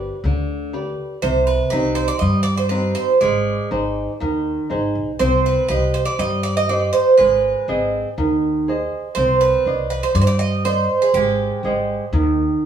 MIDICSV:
0, 0, Header, 1, 4, 480
1, 0, Start_track
1, 0, Tempo, 495458
1, 1190, Time_signature, 4, 2, 24, 8
1, 12260, End_track
2, 0, Start_track
2, 0, Title_t, "Bouzouki"
2, 0, Program_c, 0, 25
2, 0, Note_on_c, 0, 71, 80
2, 190, Note_off_c, 0, 71, 0
2, 1184, Note_on_c, 0, 72, 81
2, 1419, Note_off_c, 0, 72, 0
2, 1423, Note_on_c, 0, 71, 71
2, 1637, Note_off_c, 0, 71, 0
2, 1649, Note_on_c, 0, 71, 82
2, 1887, Note_off_c, 0, 71, 0
2, 1891, Note_on_c, 0, 72, 83
2, 2010, Note_off_c, 0, 72, 0
2, 2014, Note_on_c, 0, 74, 97
2, 2117, Note_off_c, 0, 74, 0
2, 2121, Note_on_c, 0, 75, 84
2, 2349, Note_off_c, 0, 75, 0
2, 2353, Note_on_c, 0, 74, 95
2, 2490, Note_off_c, 0, 74, 0
2, 2494, Note_on_c, 0, 72, 83
2, 2605, Note_off_c, 0, 72, 0
2, 2608, Note_on_c, 0, 71, 72
2, 2853, Note_off_c, 0, 71, 0
2, 2857, Note_on_c, 0, 72, 82
2, 3104, Note_off_c, 0, 72, 0
2, 3108, Note_on_c, 0, 74, 81
2, 4032, Note_off_c, 0, 74, 0
2, 5032, Note_on_c, 0, 72, 86
2, 5257, Note_off_c, 0, 72, 0
2, 5289, Note_on_c, 0, 71, 71
2, 5496, Note_off_c, 0, 71, 0
2, 5508, Note_on_c, 0, 71, 82
2, 5735, Note_off_c, 0, 71, 0
2, 5754, Note_on_c, 0, 72, 81
2, 5861, Note_off_c, 0, 72, 0
2, 5865, Note_on_c, 0, 74, 90
2, 5982, Note_off_c, 0, 74, 0
2, 5999, Note_on_c, 0, 75, 89
2, 6228, Note_off_c, 0, 75, 0
2, 6232, Note_on_c, 0, 74, 91
2, 6358, Note_off_c, 0, 74, 0
2, 6364, Note_on_c, 0, 75, 94
2, 6480, Note_off_c, 0, 75, 0
2, 6484, Note_on_c, 0, 74, 81
2, 6704, Note_off_c, 0, 74, 0
2, 6711, Note_on_c, 0, 72, 88
2, 6937, Note_off_c, 0, 72, 0
2, 6952, Note_on_c, 0, 71, 80
2, 7876, Note_off_c, 0, 71, 0
2, 8863, Note_on_c, 0, 72, 91
2, 9111, Note_off_c, 0, 72, 0
2, 9114, Note_on_c, 0, 71, 81
2, 9562, Note_off_c, 0, 71, 0
2, 9593, Note_on_c, 0, 71, 80
2, 9707, Note_off_c, 0, 71, 0
2, 9719, Note_on_c, 0, 72, 86
2, 9830, Note_off_c, 0, 72, 0
2, 9833, Note_on_c, 0, 74, 92
2, 9891, Note_off_c, 0, 74, 0
2, 9896, Note_on_c, 0, 72, 80
2, 9946, Note_off_c, 0, 72, 0
2, 9950, Note_on_c, 0, 74, 103
2, 10062, Note_off_c, 0, 74, 0
2, 10066, Note_on_c, 0, 75, 100
2, 10294, Note_off_c, 0, 75, 0
2, 10318, Note_on_c, 0, 72, 98
2, 10675, Note_on_c, 0, 68, 77
2, 10687, Note_off_c, 0, 72, 0
2, 10787, Note_off_c, 0, 68, 0
2, 10794, Note_on_c, 0, 67, 86
2, 12193, Note_off_c, 0, 67, 0
2, 12260, End_track
3, 0, Start_track
3, 0, Title_t, "Nylon-string guitar"
3, 0, Program_c, 1, 24
3, 0, Note_on_c, 1, 67, 51
3, 0, Note_on_c, 1, 71, 46
3, 0, Note_on_c, 1, 74, 51
3, 135, Note_off_c, 1, 67, 0
3, 138, Note_off_c, 1, 71, 0
3, 141, Note_off_c, 1, 74, 0
3, 245, Note_on_c, 1, 50, 62
3, 703, Note_off_c, 1, 50, 0
3, 710, Note_on_c, 1, 67, 46
3, 713, Note_on_c, 1, 71, 40
3, 717, Note_on_c, 1, 74, 50
3, 1094, Note_off_c, 1, 67, 0
3, 1096, Note_off_c, 1, 71, 0
3, 1098, Note_off_c, 1, 74, 0
3, 1187, Note_on_c, 1, 48, 71
3, 1654, Note_off_c, 1, 48, 0
3, 1666, Note_on_c, 1, 60, 51
3, 1672, Note_on_c, 1, 63, 51
3, 1679, Note_on_c, 1, 67, 57
3, 2052, Note_off_c, 1, 60, 0
3, 2056, Note_off_c, 1, 63, 0
3, 2060, Note_off_c, 1, 67, 0
3, 2147, Note_on_c, 1, 55, 61
3, 2615, Note_off_c, 1, 55, 0
3, 2621, Note_on_c, 1, 60, 44
3, 2625, Note_on_c, 1, 63, 40
3, 2633, Note_on_c, 1, 67, 50
3, 3010, Note_off_c, 1, 60, 0
3, 3012, Note_off_c, 1, 63, 0
3, 3016, Note_off_c, 1, 67, 0
3, 3117, Note_on_c, 1, 56, 65
3, 3581, Note_off_c, 1, 56, 0
3, 3593, Note_on_c, 1, 63, 51
3, 3600, Note_on_c, 1, 68, 46
3, 3602, Note_on_c, 1, 72, 59
3, 3978, Note_off_c, 1, 63, 0
3, 3980, Note_off_c, 1, 68, 0
3, 3983, Note_off_c, 1, 72, 0
3, 4073, Note_on_c, 1, 51, 62
3, 4539, Note_off_c, 1, 51, 0
3, 4551, Note_on_c, 1, 63, 42
3, 4557, Note_on_c, 1, 68, 38
3, 4559, Note_on_c, 1, 72, 52
3, 4937, Note_off_c, 1, 63, 0
3, 4941, Note_off_c, 1, 68, 0
3, 4941, Note_off_c, 1, 72, 0
3, 5037, Note_on_c, 1, 60, 77
3, 5502, Note_off_c, 1, 60, 0
3, 5521, Note_on_c, 1, 67, 52
3, 5530, Note_on_c, 1, 72, 42
3, 5533, Note_on_c, 1, 75, 54
3, 5904, Note_off_c, 1, 67, 0
3, 5906, Note_off_c, 1, 72, 0
3, 5910, Note_off_c, 1, 75, 0
3, 5994, Note_on_c, 1, 55, 57
3, 6461, Note_off_c, 1, 55, 0
3, 6481, Note_on_c, 1, 67, 48
3, 6488, Note_on_c, 1, 72, 42
3, 6496, Note_on_c, 1, 75, 50
3, 6864, Note_off_c, 1, 67, 0
3, 6867, Note_off_c, 1, 72, 0
3, 6872, Note_off_c, 1, 75, 0
3, 6957, Note_on_c, 1, 56, 73
3, 7423, Note_off_c, 1, 56, 0
3, 7444, Note_on_c, 1, 60, 47
3, 7447, Note_on_c, 1, 68, 56
3, 7449, Note_on_c, 1, 75, 58
3, 7826, Note_off_c, 1, 60, 0
3, 7826, Note_off_c, 1, 68, 0
3, 7829, Note_off_c, 1, 75, 0
3, 7922, Note_on_c, 1, 51, 64
3, 8386, Note_off_c, 1, 51, 0
3, 8410, Note_on_c, 1, 68, 41
3, 8416, Note_on_c, 1, 72, 39
3, 8422, Note_on_c, 1, 75, 51
3, 8789, Note_off_c, 1, 68, 0
3, 8793, Note_off_c, 1, 72, 0
3, 8796, Note_off_c, 1, 75, 0
3, 8888, Note_on_c, 1, 60, 70
3, 9348, Note_off_c, 1, 60, 0
3, 9366, Note_on_c, 1, 72, 54
3, 9369, Note_on_c, 1, 74, 45
3, 9373, Note_on_c, 1, 75, 55
3, 9747, Note_off_c, 1, 72, 0
3, 9747, Note_off_c, 1, 74, 0
3, 9750, Note_off_c, 1, 75, 0
3, 9852, Note_on_c, 1, 55, 58
3, 10310, Note_off_c, 1, 55, 0
3, 10318, Note_on_c, 1, 72, 47
3, 10322, Note_on_c, 1, 74, 42
3, 10326, Note_on_c, 1, 75, 50
3, 10701, Note_off_c, 1, 72, 0
3, 10703, Note_off_c, 1, 74, 0
3, 10706, Note_off_c, 1, 75, 0
3, 10807, Note_on_c, 1, 56, 67
3, 11266, Note_off_c, 1, 56, 0
3, 11280, Note_on_c, 1, 56, 54
3, 11286, Note_on_c, 1, 72, 46
3, 11290, Note_on_c, 1, 75, 58
3, 11661, Note_off_c, 1, 56, 0
3, 11665, Note_off_c, 1, 72, 0
3, 11666, Note_off_c, 1, 75, 0
3, 11753, Note_on_c, 1, 51, 69
3, 12218, Note_off_c, 1, 51, 0
3, 12260, End_track
4, 0, Start_track
4, 0, Title_t, "Upright bass"
4, 0, Program_c, 2, 32
4, 230, Note_on_c, 2, 38, 97
4, 902, Note_off_c, 2, 38, 0
4, 1190, Note_on_c, 2, 36, 93
4, 1526, Note_off_c, 2, 36, 0
4, 1668, Note_on_c, 2, 36, 85
4, 2005, Note_off_c, 2, 36, 0
4, 2147, Note_on_c, 2, 43, 105
4, 2821, Note_off_c, 2, 43, 0
4, 3109, Note_on_c, 2, 32, 91
4, 3446, Note_off_c, 2, 32, 0
4, 3595, Note_on_c, 2, 32, 83
4, 3930, Note_off_c, 2, 32, 0
4, 4082, Note_on_c, 2, 39, 94
4, 4416, Note_off_c, 2, 39, 0
4, 4559, Note_on_c, 2, 32, 81
4, 4773, Note_off_c, 2, 32, 0
4, 4799, Note_on_c, 2, 35, 76
4, 5013, Note_off_c, 2, 35, 0
4, 5041, Note_on_c, 2, 36, 96
4, 5375, Note_off_c, 2, 36, 0
4, 5516, Note_on_c, 2, 36, 76
4, 5852, Note_off_c, 2, 36, 0
4, 5995, Note_on_c, 2, 43, 101
4, 6668, Note_off_c, 2, 43, 0
4, 6959, Note_on_c, 2, 32, 94
4, 7295, Note_off_c, 2, 32, 0
4, 7440, Note_on_c, 2, 32, 85
4, 7775, Note_off_c, 2, 32, 0
4, 7922, Note_on_c, 2, 39, 96
4, 8593, Note_off_c, 2, 39, 0
4, 8877, Note_on_c, 2, 36, 93
4, 9213, Note_off_c, 2, 36, 0
4, 9353, Note_on_c, 2, 36, 77
4, 9690, Note_off_c, 2, 36, 0
4, 9831, Note_on_c, 2, 43, 108
4, 10504, Note_off_c, 2, 43, 0
4, 10789, Note_on_c, 2, 32, 95
4, 11127, Note_off_c, 2, 32, 0
4, 11268, Note_on_c, 2, 32, 82
4, 11606, Note_off_c, 2, 32, 0
4, 11748, Note_on_c, 2, 39, 102
4, 12085, Note_off_c, 2, 39, 0
4, 12260, End_track
0, 0, End_of_file